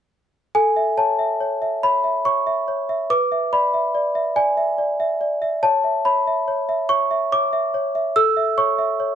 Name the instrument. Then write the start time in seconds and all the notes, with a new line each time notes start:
celesta
0.55 A4 G#5
0.76 E5
0.98 C#5 A5
1.19 E5
1.40 C#5
1.62 E5
1.83 C#5 B5
2.04 E5
2.25 C#5 C#6
2.47 E5
2.68 C#5
2.89 E5
3.10 B4 D6
3.32 E5
3.53 D5 B5
3.74 E5
3.95 D5
4.15 E5
4.36 D5 G#5
4.57 E5
4.78 D5
5.00 E5
5.21 D5
5.42 E5
5.63 C#5 A5
5.84 E5
6.05 C#5 B5
6.27 E5
6.48 C#5
6.69 E5
6.89 C#5 C#6
7.11 E5
7.32 C#5 D6
7.53 E5
7.74 C#5
7.95 E5
8.16 A4 E6
8.37 E5
8.58 C#5 C#6
8.78 E5
9.00 C#5